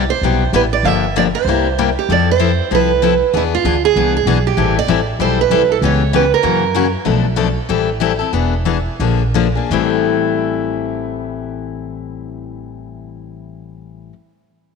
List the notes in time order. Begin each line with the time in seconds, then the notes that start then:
0.10 C5
0.21 B1 C3 G3 B3 E4 G4
0.53 A1 C3 G3 B3 E4 G4 B4
0.73 D5
0.83 G1 D3 F3 A#3 D4 G4 E5
1.16 D3 F3 A#3 D4 G4 D5
1.35 C5
1.45 C2 C3 G3
1.49 A#3 E4 G4
1.78 C3 G3 A#3 E4 G4
1.99 G4
2.09 F2 F3 C4 E4 A4 D5
2.31 C5
2.39 F3 C4 E4 A4
2.71 C2 F3 C4 E4 A4 B4
3.02 F3 C4 E4 A4
3.33 E2 E3 B3 D4 E4 G#4
3.55 F4
3.64 D2 E3 B3 D4 G#4
3.85 G#4
3.96 C2 E3 B3 D4 G#4
4.17 G#4
4.25 B1 E3 B3 D4 G#4
4.47 G4
4.57 A1 E3 G3 C4 E4 A4
4.79 D5
4.87 A1 E3 G3 C4 E4 A4
5.19 B1 E3 G3 C4 E4 A4 C5
5.41 B4
5.50 C2 E3 G3 C4 E4 A4
5.72 A4
5.82 C#2 C#3 E3 B3 C#4 G4 C#5
6.13 C#3 E3 B3 C#4 G4 B4
6.34 A#4
6.43 F#2 C#3 E3 A#3 C#4 F#4
6.75 C#3 E3 A#3 C#4 F#4
7.05 B1 B2 F3 A3 D4 A4
7.36 B2 F3 A3 D4 A4
7.69 A1 E3 G3 C4 E4 A4
8.00 E3 G3 C4 E4 A4
8.19 C4 E4 A4
8.33 E1 E3 B3 D4 G#4
8.65 E3 B3 D4 G#4
9.00 A#1 D3 F3 A#3 D4 G#4
9.34 D3 F3 A#3 D4 G#4
9.55 A#3 D4 G#4
9.70 A1 A2 E3 G3 C4 E4 A4